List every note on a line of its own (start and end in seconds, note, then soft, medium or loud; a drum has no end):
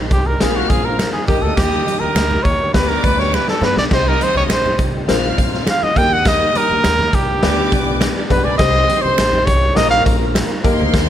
0.00 0.11 A#1 medium
0.00 0.40 D#3 medium
0.00 0.37 G3 medium
0.00 0.40 C4 medium
0.00 0.39 D#4 medium
0.11 0.34 C2 medium
0.11 0.28 G4 medium
0.11 kick medium
0.11 closed hi-hat medium
0.27 0.43 A#4 medium
0.40 0.63 A#1 medium
0.40 1.28 F3 medium
0.40 1.11 A#3 medium
0.40 1.26 A#3 medium
0.40 1.11 C4 medium
0.40 1.28 C4 medium
0.40 1.28 F4 medium
0.40 1.11 F4 medium
0.40 0.57 G#4 medium
0.40 1.11 A#4 medium
0.40 0.98 F5 medium
0.40 0.98 F6 medium
0.40 snare loud
0.40 closed hi-hat medium
0.40 muted conga soft
0.40 high conga medium
0.56 0.71 F#4 medium
0.69 1.04 A#1 loud
0.69 0.86 G#4 medium
0.69 kick medium
0.69 closed hi-hat medium
0.85 1.12 A#4 medium
0.99 finger snap medium
0.99 snare loud
0.99 closed hi-hat medium
0.99 high conga medium
1.13 1.27 G#4 medium
1.13 muted conga soft
1.13 high conga medium
1.26 1.40 D#2 medium
1.26 2.72 G3 medium
1.26 2.73 A#3 medium
1.26 2.22 A#3 medium
1.26 2.72 D#4 medium
1.26 2.22 D#4 medium
1.26 2.72 G4 medium
1.26 1.44 G4 medium
1.26 2.22 G4 medium
1.26 2.22 A#4 medium
1.26 2.43 D#5 medium
1.26 2.43 D#6 loud
1.26 kick loud
1.26 closed hi-hat medium
1.26 low conga medium
1.42 1.54 D2 medium
1.42 1.56 A4 medium
1.56 1.80 D#2 loud
1.56 2.01 G4 medium
1.56 kick loud
1.56 snare loud
1.56 closed hi-hat medium
1.56 muted conga soft
1.56 low conga medium
1.72 muted conga soft
1.87 closed hi-hat medium
1.87 high conga medium
2.00 2.12 D#2 medium
2.00 2.45 A#4 loud
2.00 high conga medium
2.15 2.38 D2 medium
2.15 finger snap medium
2.15 snare loud
2.15 closed hi-hat medium
2.31 high conga soft
2.31 low conga medium
2.43 2.67 D#2 medium
2.43 2.73 C#5 loud
2.43 kick medium
2.43 closed hi-hat medium
2.74 2.97 D2 medium
2.74 3.89 G3 medium
2.74 3.44 B3 medium
2.74 3.90 B3 medium
2.74 3.44 D4 medium
2.74 3.91 D4 medium
2.74 3.45 G4 medium
2.74 3.89 G4 medium
2.74 2.90 B4 medium
2.74 3.45 B4 medium
2.74 3.61 D5 medium
2.74 3.61 D6 loud
2.74 kick medium
2.74 snare loud
2.74 closed hi-hat medium
2.74 high conga medium
2.88 3.06 A#4 medium
2.88 muted conga soft
3.04 3.37 D2 medium
3.04 3.21 B4 medium
3.04 kick loud
3.04 closed hi-hat medium
3.20 3.36 C#5 medium
3.20 snare soft
3.33 3.48 B4 medium
3.33 finger snap medium
3.33 snare medium
3.33 muted conga soft
3.33 high conga medium
3.48 3.66 A4 medium
3.48 snare medium
3.48 high conga medium
3.61 3.73 G2 medium
3.61 3.82 B3 medium
3.61 3.82 D4 medium
3.61 3.82 G4 medium
3.61 3.82 B4 medium
3.61 3.78 B4 loud
3.61 snare medium
3.61 low conga medium
3.75 3.87 B1 medium
3.75 3.85 D5 medium
3.75 snare medium
3.90 4.14 C2 loud
3.90 5.07 G3 medium
3.90 5.93 C4 medium
3.90 4.70 C4 medium
3.90 5.07 D#4 medium
3.90 4.70 D#4 medium
3.90 5.07 G4 medium
3.90 4.70 G4 medium
3.90 4.71 C5 medium
3.90 4.10 C5 loud
3.90 4.77 D#5 medium
3.90 4.78 D#6 medium
3.90 kick loud
3.90 snare loud
3.90 crash medium
4.06 4.25 A#4 loud
4.06 muted conga soft
4.21 4.37 C5 loud
4.21 closed hi-hat medium
4.21 high conga medium
4.34 4.46 C2 medium
4.34 4.44 C#5 medium
4.34 high conga medium
4.48 4.71 A#1 medium
4.48 finger snap medium
4.48 snare loud
4.48 closed hi-hat medium
4.48 muted conga soft
4.52 4.78 C5 loud
4.66 high conga soft
4.66 low conga medium
4.79 5.02 C2 medium
4.79 kick medium
4.79 closed hi-hat medium
5.08 5.31 A#1 loud
5.08 5.96 F3 medium
5.08 7.40 A#3 medium
5.08 5.78 C4 medium
5.08 5.78 F4 medium
5.08 5.95 F4 medium
5.08 5.79 A#4 medium
5.08 5.79 C5 loud
5.08 5.65 F5 medium
5.08 5.66 F6 medium
5.08 snare loud
5.08 closed hi-hat loud
5.08 high conga medium
5.25 muted conga soft
5.38 5.60 A#1 medium
5.38 kick medium
5.38 closed hi-hat medium
5.54 snare soft
5.67 5.85 F5 loud
5.67 finger snap medium
5.67 snare loud
5.67 closed hi-hat medium
5.67 high conga medium
5.82 5.99 D#5 loud
5.82 muted upright bass stroke soft
5.82 high conga medium
5.95 6.41 D#2 loud
5.95 7.40 G3 medium
5.95 6.89 A#3 medium
5.95 6.90 D#4 medium
5.95 7.41 D#4 medium
5.95 7.40 G4 medium
5.95 6.90 G4 medium
5.95 6.90 A#4 medium
5.95 7.11 D#5 medium
5.95 6.15 G5 loud
5.95 7.11 D#6 loud
5.95 kick medium
5.95 closed hi-hat medium
5.95 low conga medium
6.13 6.29 F#5 loud
6.25 6.58 D#5 loud
6.25 kick loud
6.25 snare loud
6.25 closed hi-hat loud
6.41 muted conga soft
6.55 7.16 A#4 loud
6.55 closed hi-hat medium
6.55 high conga medium
6.69 6.81 D#2 medium
6.69 high conga medium
6.84 7.07 D#2 medium
6.84 finger snap medium
6.84 snare loud
6.84 closed hi-hat medium
6.99 muted conga soft
6.99 high conga medium
6.99 low conga medium
7.13 7.36 C2 medium
7.13 8.02 G4 medium
7.13 kick medium
7.13 closed hi-hat medium
7.41 7.65 D2 loud
7.41 8.58 G3 medium
7.41 8.58 B3 medium
7.41 8.13 B3 medium
7.41 8.58 D4 medium
7.41 8.13 D4 medium
7.41 8.58 G4 medium
7.41 8.13 G4 medium
7.41 8.13 B4 medium
7.41 8.09 D5 medium
7.41 8.09 D6 loud
7.41 snare loud
7.41 closed hi-hat medium
7.41 muted conga soft
7.41 high conga medium
7.57 muted conga soft
7.72 8.06 B1 loud
7.72 kick loud
7.72 closed hi-hat medium
8.01 finger snap medium
8.01 snare loud
8.01 closed hi-hat medium
8.01 high conga medium
8.16 8.24 D4 medium
8.16 8.24 D5 medium
8.16 high conga medium
8.24 8.31 D#4 medium
8.24 8.31 D#5 medium
8.30 8.42 B1 medium
8.30 8.50 B3 medium
8.30 8.50 D4 medium
8.30 8.38 F4 medium
8.30 8.50 G4 medium
8.30 8.50 B4 medium
8.30 8.46 B4 medium
8.30 8.38 F5 medium
8.30 kick loud
8.30 closed hi-hat medium
8.30 low conga medium
8.38 8.45 G4 medium
8.38 8.45 G5 medium
8.44 8.56 B1 loud
8.44 8.52 G#4 medium
8.44 8.57 D5 medium
8.44 8.52 G#5 medium
8.51 8.59 B4 medium
8.51 8.59 B5 medium
8.58 8.82 C2 loud
8.58 9.76 G3 medium
8.58 9.38 C4 medium
8.58 10.63 C4 medium
8.58 9.38 D#4 medium
8.58 9.76 D#4 medium
8.58 9.75 G4 medium
8.58 9.39 G4 medium
8.58 9.45 C5 medium
8.58 9.39 C5 medium
8.58 9.03 D#5 loud
8.58 9.45 C6 loud
8.58 kick loud
8.58 snare loud
8.58 closed hi-hat loud
8.74 muted conga soft
8.89 closed hi-hat medium
8.89 high conga medium
9.02 9.14 C2 medium
9.02 9.47 C5 loud
9.02 high conga medium
9.18 9.47 A#1 medium
9.18 finger snap medium
9.18 snare loud
9.18 closed hi-hat medium
9.33 muted conga soft
9.33 high conga medium
9.33 low conga medium
9.45 9.70 C2 medium
9.45 9.78 C#5 loud
9.45 kick medium
9.45 closed hi-hat medium
9.75 9.99 A#1 loud
9.75 10.63 F3 medium
9.75 10.46 A#3 medium
9.75 11.09 A#3 medium
9.75 10.46 C4 medium
9.75 10.63 F4 medium
9.75 10.47 F4 medium
9.75 10.47 A#4 medium
9.75 10.34 A#4 medium
9.75 9.90 D#5 loud
9.75 10.34 A#5 loud
9.75 snare loud
9.75 closed hi-hat loud
9.75 high conga medium
9.91 10.04 F5 loud
9.91 muted conga soft
10.06 10.40 A#1 loud
10.06 kick loud
10.06 closed hi-hat medium
10.35 finger snap medium
10.35 snare loud
10.35 closed hi-hat loud
10.35 muted conga soft
10.35 high conga medium
10.51 muted conga soft
10.51 high conga medium
10.64 10.76 D#2 medium
10.64 11.09 D#3 medium
10.64 11.09 G3 medium
10.64 11.09 A#3 loud
10.64 11.09 D#4 medium
10.64 11.09 G4 medium
10.64 11.09 A#4 loud
10.64 11.09 C5 loud
10.64 11.09 C6 loud
10.64 kick loud
10.64 closed hi-hat medium
10.64 low conga medium
10.79 10.91 D2 loud
10.94 11.09 D#2 loud
10.94 kick loud
10.94 snare loud
10.94 closed hi-hat loud
10.94 muted conga soft
10.94 low conga medium